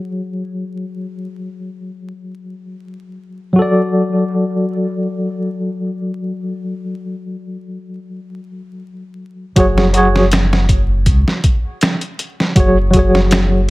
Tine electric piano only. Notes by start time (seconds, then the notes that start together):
Already playing: F#3 F#4 G#4 C#5
3.53 F#3 F#4
3.59 A4 D5
9.56 F#3 F#4 G#4
9.60 C#5
9.93 F#3 F#4 G#4
9.97 C#5
12.55 F#3 F#4 G#4
12.60 C#5
12.91 F#3 F#4
12.97 G#4 C#5